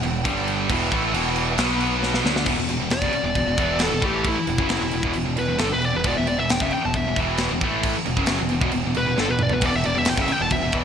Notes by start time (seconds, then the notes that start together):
Already playing: E4 B4 F#5 G5
0.03 E1 E2 B2, crash
0.24 G1 G2 D3 G3 D4 A4, kick, crash
0.48 crash
0.68 E1 E2 B2 E3 E4 B4 F#5, kick, crash
0.92 A1 A2 E3 A3, kick, crash
1.13 E1 E2 B2 E3, crash
1.36 crash
1.57 B1 B2 F#3 B3 F#4 B5, snare, crash
1.81 crash
2.03 snare
2.14 snare
2.24 D2 D3 A3 D4 E4 F#5 G5, snare
2.36 snare
2.46 E1 E2 B2, kick, crash
2.58 E1 E2 B2
2.69 E1 E2 B2, crash
2.79 E1 E2 B2
2.90 E1 E2 B2 D5, snare, crash
3.02 F#1 F#2 C#3, kick
3.12 muted picked electric bass stroke, muted distorted electric guitar stroke, crash
3.24 E1 E2 B2
3.35 E1 E2 B2, kick, crash
3.46 E1 E2 B2
3.57 E1 E2 B2 E3, kick, crash
3.79 snare, crash
3.83 A4
3.91 E1 E2 B2
4.01 A1 A2 E3 A3, kick, crash
4.05 G4
4.24 kick, crash
4.29 E4
4.36 muted distorted electric guitar stroke, muted picked electric bass stroke
4.47 E1 E2 B2, crash
4.58 F#1 F#2 C#3 F#3, kick
4.69 snare, crash
4.81 E1 E2 B2
4.91 E1 E2 B2, crash
5.03 E1 E2 B2, kick
5.13 E1 E2 B2, crash
5.26 E1 E2 B2
5.37 E1 E2 B2 B4, crash
5.49 E1 E2 B2
5.58 G1 G2 D3 A4, snare, crash
5.72 E1 E2 B2 B4
5.82 D5, crash
5.94 E1 E2 B2 B4
6.04 E1 E2 B2 D5, kick, crash
6.17 E1 E2 B2 E5
6.27 E1 E2 B2 D5, crash
6.38 E1 E2 B2 E5
6.49 E1 E2 B2 G5, snare, crash
6.60 F#1 F#2 C#3 E5, kick
6.71 G5, muted distorted electric guitar stroke, muted picked electric bass stroke, crash
6.85 E1 E2 B2 A5
6.94 E1 E2 B2 E5, kick, crash
7.07 E1 E2 B2
7.16 E1 E2 B2 E3, kick, crash
7.37 snare, crash
7.51 E1 E2 B2
7.61 A1 A2 E3 A3, kick, crash
7.83 kick, crash
7.96 muted picked electric bass stroke, muted distorted electric guitar stroke
8.06 E1 E2 B2, crash
8.17 F#1 F#2 C#3 F#3, kick
8.26 snare, crash
8.40 E1 E2 B2
8.49 E1 E2 B2, crash
8.61 E1 E2 B2, kick
8.72 E1 E2 B2, crash
8.85 E1 E2 B2
8.94 E1 E2 B2 B4, crash
9.07 E1 E2 B2
9.17 G1 G2 D3 A4, snare
9.29 E1 E2 B2 B4
9.39 D5, mid tom
9.49 E2 B2, floor tom
9.53 E1 B4
9.61 E1 E2 B2 E4 B4 F#5 G5, kick, crash
9.65 D5
9.73 E1 E2 B2 E5
9.84 E1 E2 B2 D5, crash
9.95 E1 E2 B2 E5
10.05 E2 B2 G5, snare, crash
10.09 E1
10.18 F#1 F#2 C#3 E5, kick
10.28 muted distorted electric guitar stroke, crash
10.32 G5, muted picked electric bass stroke
10.41 E1 E2 B2 A5
10.50 E1 E2 B2 E5, kick, crash
10.61 E2 B2
10.65 E1
10.72 E1 E2 B2 E3, kick, crash